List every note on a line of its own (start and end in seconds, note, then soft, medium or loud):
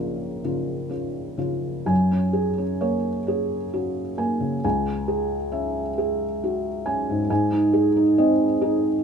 0.00 1.85 A#1 soft
0.00 0.44 C#3 soft
0.00 0.40 C#4 soft
0.00 0.44 F4 soft
0.00 0.91 A#4 medium
0.44 0.89 C#3 soft
0.44 0.89 F4 soft
0.89 1.36 C#4 soft
0.89 1.36 F4 soft
1.38 1.84 C#3 soft
1.38 1.84 F4 soft
1.86 4.58 F#2 soft
1.86 2.62 G#5 soft
2.11 2.49 C#4 soft
2.33 3.08 G#4 soft
2.58 2.95 C#4 soft
2.81 3.18 A#3 soft
2.81 3.55 C#5 soft
3.27 3.64 C#4 soft
3.27 4.01 G#4 soft
3.74 4.10 C#4 soft
3.74 4.19 F#4 soft
4.18 4.54 A#3 soft
4.18 4.63 G#5 soft
4.40 4.63 C#3 soft
4.64 7.26 C#2 medium
4.64 5.35 G#5 soft
5.08 5.79 G#4 soft
5.52 5.88 C#4 soft
5.52 6.24 E5 soft
5.98 6.68 G#4 soft
6.44 6.87 F#4 soft
6.86 7.21 C#4 soft
6.86 7.29 G#5 soft
7.10 7.29 G#2 soft
7.30 9.04 G#2 medium
7.30 8.00 G#5 medium
7.52 7.87 D#4 soft
7.73 8.43 G#4 soft
7.96 8.31 D#4 soft
8.18 8.52 C4 soft
8.18 8.87 D#5 soft
8.61 8.96 D#4 soft
8.61 9.04 G#4 medium